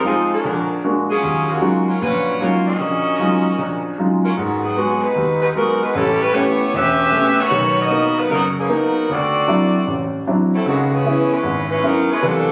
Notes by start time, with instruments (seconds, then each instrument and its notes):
0.04 saxophone section F3 C4 D#4 G#4, grand piano G#3 D#4 F4
0.33 saxophone section G#3 D4 F#4 A#4
0.45 grand piano A#1
0.84 grand piano G#3 A#3 D4 F#4
1.09 saxophone section F#3 C#4 F4 G#4
1.23 grand piano D#2
1.49 saxophone section C#3 A#3 F4 F#4
1.61 grand piano F#3 G#3 C#4 D#4 F4
1.87 saxophone section F#3 C#4 F4 A#4
2.01 grand piano A#1 A#2, saxophone section F#3 C#4 F4 B4
2.41 grand piano F#3 G#3 C#4 D#4 F4, saxophone section A#3 F4 F#4 C#5
2.67 saxophone section C#4 F#4 A#4 D#5
2.80 grand piano A#1
3.19 grand piano F#3 G#3 C#4 D#4 F4
3.59 grand piano A#1
3.98 grand piano F#3 G#3 C#4 D#4 F4
4.24 saxophone section F#3 C#4 F4 A#4
4.37 grand piano G#2, saxophone section D#3 G#3 B3 F#4
4.63 saxophone section F#3 B3 D#4 G#4
4.77 grand piano G#3 B3 F#4
5.03 saxophone section G#3 D#4 F#4 B4
5.16 grand piano D#2
5.42 saxophone section G#3 D#4 F#4 B4
5.56 saxophone section F#3 B3 D#4 A#4, grand piano G#3 B3 F#4
5.82 saxophone section G#3 D#4 F#4 B4
5.95 grand piano A1, saxophone section G3 C#4 E4 A4
6.22 saxophone section G3 C#4 E4 B4
6.34 grand piano A3 B3 C#4 G4, saxophone section B3 E4 G4 C#5
6.73 grand piano E1, saxophone section C#4 G4 B4 E5
7.12 grand piano A3 B3 C#4 G4
7.40 saxophone section B3 F#4 A#4 C#5
7.51 grand piano B1 D#3
7.79 saxophone section B3 F#4 A#4 D#5
7.90 grand piano A#3 B3 D#4
8.19 saxophone section F#3 A#3 D#4 B4
8.30 grand piano F#1, saxophone section F#3 B3 D#4 A#4
8.58 saxophone section E3 A#3 C#4 G#4
8.69 saxophone section F#3 B3 A#4, grand piano A#3 B3 D#4
8.73 saxophone section D#4
9.09 grand piano D2, saxophone section C4 F#4 A4 D5
9.48 grand piano F#3 C4 D4 E4
9.87 grand piano A1
10.27 grand piano F#3 C4 D4 E4
10.53 saxophone section F#3 C4 E4 A4
10.65 grand piano C#2 C#3, saxophone section D#3 G#3 B3 F#4
10.92 saxophone section E3 B3 C#4 G#4
11.05 grand piano B3 C#4 E4
11.33 saxophone section G#3 C#4 E4 B4
11.43 grand piano G#1
11.70 saxophone section G#3 C#4 E4 B4
11.83 saxophone section F#3 B3 D#4 A#4, grand piano B3 C#4 E4
12.12 saxophone section G#3 C#4 E4 B4
12.23 grand piano C2 E3, saxophone section F#3 A#3 D4 A4